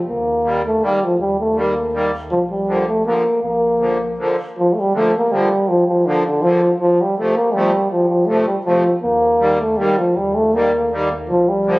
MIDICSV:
0, 0, Header, 1, 4, 480
1, 0, Start_track
1, 0, Key_signature, -2, "major"
1, 0, Tempo, 373832
1, 95, Time_signature, 3, 2, 24, 8
1, 15138, End_track
2, 0, Start_track
2, 0, Title_t, "Euphonium"
2, 0, Program_c, 0, 58
2, 105, Note_on_c, 0, 58, 72
2, 788, Note_off_c, 0, 58, 0
2, 847, Note_on_c, 0, 57, 74
2, 1082, Note_on_c, 0, 55, 71
2, 1101, Note_off_c, 0, 57, 0
2, 1340, Note_on_c, 0, 53, 68
2, 1359, Note_off_c, 0, 55, 0
2, 1536, Note_off_c, 0, 53, 0
2, 1543, Note_on_c, 0, 55, 76
2, 1779, Note_off_c, 0, 55, 0
2, 1797, Note_on_c, 0, 57, 71
2, 2039, Note_on_c, 0, 58, 56
2, 2058, Note_off_c, 0, 57, 0
2, 2504, Note_off_c, 0, 58, 0
2, 2965, Note_on_c, 0, 53, 77
2, 3081, Note_off_c, 0, 53, 0
2, 3219, Note_on_c, 0, 55, 72
2, 3666, Note_off_c, 0, 55, 0
2, 3694, Note_on_c, 0, 57, 75
2, 3903, Note_off_c, 0, 57, 0
2, 3927, Note_on_c, 0, 58, 89
2, 4370, Note_off_c, 0, 58, 0
2, 4402, Note_on_c, 0, 58, 81
2, 5316, Note_off_c, 0, 58, 0
2, 5888, Note_on_c, 0, 53, 86
2, 6079, Note_on_c, 0, 57, 60
2, 6098, Note_off_c, 0, 53, 0
2, 6158, Note_on_c, 0, 55, 89
2, 6178, Note_off_c, 0, 57, 0
2, 6359, Note_off_c, 0, 55, 0
2, 6368, Note_on_c, 0, 57, 77
2, 6594, Note_off_c, 0, 57, 0
2, 6634, Note_on_c, 0, 58, 87
2, 6836, Note_on_c, 0, 55, 91
2, 6855, Note_off_c, 0, 58, 0
2, 7302, Note_on_c, 0, 53, 84
2, 7321, Note_off_c, 0, 55, 0
2, 7544, Note_off_c, 0, 53, 0
2, 7552, Note_on_c, 0, 53, 79
2, 7782, Note_on_c, 0, 50, 82
2, 7801, Note_off_c, 0, 53, 0
2, 8034, Note_off_c, 0, 50, 0
2, 8043, Note_on_c, 0, 50, 84
2, 8248, Note_on_c, 0, 53, 97
2, 8268, Note_off_c, 0, 50, 0
2, 8618, Note_off_c, 0, 53, 0
2, 8738, Note_on_c, 0, 53, 100
2, 9007, Note_on_c, 0, 55, 87
2, 9027, Note_off_c, 0, 53, 0
2, 9214, Note_off_c, 0, 55, 0
2, 9221, Note_on_c, 0, 57, 81
2, 9446, Note_on_c, 0, 58, 91
2, 9465, Note_off_c, 0, 57, 0
2, 9676, Note_on_c, 0, 55, 84
2, 9696, Note_off_c, 0, 58, 0
2, 10153, Note_off_c, 0, 55, 0
2, 10161, Note_on_c, 0, 53, 74
2, 10382, Note_off_c, 0, 53, 0
2, 10390, Note_on_c, 0, 53, 74
2, 10615, Note_on_c, 0, 57, 66
2, 10634, Note_off_c, 0, 53, 0
2, 10870, Note_off_c, 0, 57, 0
2, 10878, Note_on_c, 0, 55, 68
2, 10982, Note_off_c, 0, 55, 0
2, 11102, Note_on_c, 0, 53, 84
2, 11457, Note_off_c, 0, 53, 0
2, 11596, Note_on_c, 0, 58, 91
2, 12332, Note_on_c, 0, 57, 78
2, 12351, Note_off_c, 0, 58, 0
2, 12553, Note_on_c, 0, 55, 83
2, 12572, Note_off_c, 0, 57, 0
2, 12815, Note_on_c, 0, 53, 70
2, 12835, Note_off_c, 0, 55, 0
2, 13049, Note_on_c, 0, 55, 81
2, 13068, Note_off_c, 0, 53, 0
2, 13295, Note_on_c, 0, 57, 82
2, 13314, Note_off_c, 0, 55, 0
2, 13537, Note_on_c, 0, 58, 78
2, 13556, Note_off_c, 0, 57, 0
2, 14016, Note_off_c, 0, 58, 0
2, 14503, Note_on_c, 0, 53, 80
2, 14751, Note_on_c, 0, 55, 85
2, 14771, Note_off_c, 0, 53, 0
2, 15138, Note_off_c, 0, 55, 0
2, 15138, End_track
3, 0, Start_track
3, 0, Title_t, "Accordion"
3, 0, Program_c, 1, 21
3, 547, Note_on_c, 1, 51, 45
3, 562, Note_on_c, 1, 55, 40
3, 566, Note_on_c, 1, 58, 49
3, 794, Note_off_c, 1, 51, 0
3, 801, Note_off_c, 1, 55, 0
3, 803, Note_off_c, 1, 58, 0
3, 1034, Note_on_c, 1, 51, 45
3, 1046, Note_on_c, 1, 55, 48
3, 1060, Note_on_c, 1, 58, 63
3, 1277, Note_off_c, 1, 51, 0
3, 1284, Note_off_c, 1, 55, 0
3, 1291, Note_off_c, 1, 58, 0
3, 1984, Note_on_c, 1, 51, 55
3, 1993, Note_on_c, 1, 55, 44
3, 2008, Note_on_c, 1, 58, 53
3, 2230, Note_off_c, 1, 51, 0
3, 2234, Note_off_c, 1, 55, 0
3, 2242, Note_off_c, 1, 58, 0
3, 2465, Note_on_c, 1, 51, 53
3, 2478, Note_on_c, 1, 55, 47
3, 2495, Note_on_c, 1, 58, 56
3, 2709, Note_off_c, 1, 51, 0
3, 2715, Note_off_c, 1, 55, 0
3, 2724, Note_off_c, 1, 58, 0
3, 3420, Note_on_c, 1, 50, 46
3, 3425, Note_on_c, 1, 53, 39
3, 3441, Note_on_c, 1, 58, 51
3, 3664, Note_off_c, 1, 50, 0
3, 3666, Note_off_c, 1, 53, 0
3, 3675, Note_off_c, 1, 58, 0
3, 3908, Note_on_c, 1, 50, 46
3, 3921, Note_on_c, 1, 53, 44
3, 3938, Note_on_c, 1, 58, 58
3, 4146, Note_off_c, 1, 50, 0
3, 4152, Note_off_c, 1, 53, 0
3, 4161, Note_off_c, 1, 58, 0
3, 4858, Note_on_c, 1, 50, 50
3, 4872, Note_on_c, 1, 53, 45
3, 4881, Note_on_c, 1, 58, 53
3, 5104, Note_off_c, 1, 50, 0
3, 5111, Note_off_c, 1, 53, 0
3, 5116, Note_off_c, 1, 58, 0
3, 5359, Note_on_c, 1, 50, 59
3, 5367, Note_on_c, 1, 53, 58
3, 5373, Note_on_c, 1, 58, 53
3, 5597, Note_off_c, 1, 50, 0
3, 5601, Note_off_c, 1, 53, 0
3, 5604, Note_off_c, 1, 58, 0
3, 6319, Note_on_c, 1, 50, 59
3, 6332, Note_on_c, 1, 53, 42
3, 6344, Note_on_c, 1, 58, 63
3, 6560, Note_off_c, 1, 50, 0
3, 6567, Note_off_c, 1, 53, 0
3, 6572, Note_off_c, 1, 58, 0
3, 6812, Note_on_c, 1, 50, 60
3, 6818, Note_on_c, 1, 53, 56
3, 6829, Note_on_c, 1, 58, 63
3, 7044, Note_off_c, 1, 50, 0
3, 7047, Note_off_c, 1, 53, 0
3, 7053, Note_off_c, 1, 58, 0
3, 7771, Note_on_c, 1, 50, 57
3, 7778, Note_on_c, 1, 53, 47
3, 7792, Note_on_c, 1, 58, 68
3, 8003, Note_off_c, 1, 50, 0
3, 8007, Note_off_c, 1, 53, 0
3, 8014, Note_off_c, 1, 58, 0
3, 8252, Note_on_c, 1, 50, 60
3, 8266, Note_on_c, 1, 53, 52
3, 8284, Note_on_c, 1, 58, 63
3, 8483, Note_off_c, 1, 50, 0
3, 8490, Note_off_c, 1, 53, 0
3, 8499, Note_off_c, 1, 58, 0
3, 9208, Note_on_c, 1, 48, 47
3, 9214, Note_on_c, 1, 53, 49
3, 9229, Note_on_c, 1, 57, 59
3, 9436, Note_off_c, 1, 48, 0
3, 9439, Note_off_c, 1, 53, 0
3, 9447, Note_off_c, 1, 57, 0
3, 9673, Note_on_c, 1, 48, 65
3, 9685, Note_on_c, 1, 53, 61
3, 9697, Note_on_c, 1, 57, 70
3, 9908, Note_off_c, 1, 48, 0
3, 9914, Note_off_c, 1, 53, 0
3, 9920, Note_off_c, 1, 57, 0
3, 10610, Note_on_c, 1, 48, 52
3, 10621, Note_on_c, 1, 53, 48
3, 10629, Note_on_c, 1, 57, 54
3, 10855, Note_off_c, 1, 48, 0
3, 10860, Note_off_c, 1, 53, 0
3, 10864, Note_off_c, 1, 57, 0
3, 11103, Note_on_c, 1, 48, 58
3, 11109, Note_on_c, 1, 53, 57
3, 11123, Note_on_c, 1, 57, 60
3, 11346, Note_off_c, 1, 48, 0
3, 11348, Note_off_c, 1, 53, 0
3, 11356, Note_off_c, 1, 57, 0
3, 12050, Note_on_c, 1, 51, 54
3, 12060, Note_on_c, 1, 55, 46
3, 12078, Note_on_c, 1, 58, 66
3, 12303, Note_off_c, 1, 51, 0
3, 12309, Note_off_c, 1, 55, 0
3, 12318, Note_off_c, 1, 58, 0
3, 12541, Note_on_c, 1, 51, 54
3, 12546, Note_on_c, 1, 55, 52
3, 12563, Note_on_c, 1, 58, 60
3, 12789, Note_off_c, 1, 51, 0
3, 12792, Note_off_c, 1, 55, 0
3, 12800, Note_off_c, 1, 58, 0
3, 13525, Note_on_c, 1, 51, 60
3, 13535, Note_on_c, 1, 55, 50
3, 13550, Note_on_c, 1, 58, 62
3, 13762, Note_off_c, 1, 51, 0
3, 13767, Note_off_c, 1, 55, 0
3, 13774, Note_off_c, 1, 58, 0
3, 13994, Note_on_c, 1, 51, 57
3, 14010, Note_on_c, 1, 55, 55
3, 14016, Note_on_c, 1, 58, 59
3, 14236, Note_off_c, 1, 51, 0
3, 14244, Note_off_c, 1, 55, 0
3, 14247, Note_off_c, 1, 58, 0
3, 14948, Note_on_c, 1, 50, 55
3, 14970, Note_on_c, 1, 53, 50
3, 14976, Note_on_c, 1, 58, 68
3, 15138, Note_off_c, 1, 50, 0
3, 15138, Note_off_c, 1, 53, 0
3, 15138, Note_off_c, 1, 58, 0
3, 15138, End_track
4, 0, Start_track
4, 0, Title_t, "Sub bass"
4, 0, Program_c, 2, 38
4, 85, Note_on_c, 2, 39, 92
4, 1026, Note_off_c, 2, 39, 0
4, 1524, Note_on_c, 2, 39, 78
4, 2962, Note_on_c, 2, 34, 78
4, 2982, Note_off_c, 2, 39, 0
4, 3896, Note_off_c, 2, 34, 0
4, 4401, Note_on_c, 2, 34, 90
4, 5344, Note_off_c, 2, 34, 0
4, 11609, Note_on_c, 2, 39, 90
4, 12550, Note_off_c, 2, 39, 0
4, 13051, Note_on_c, 2, 39, 71
4, 14481, Note_on_c, 2, 34, 75
4, 14500, Note_off_c, 2, 39, 0
4, 15138, Note_off_c, 2, 34, 0
4, 15138, End_track
0, 0, End_of_file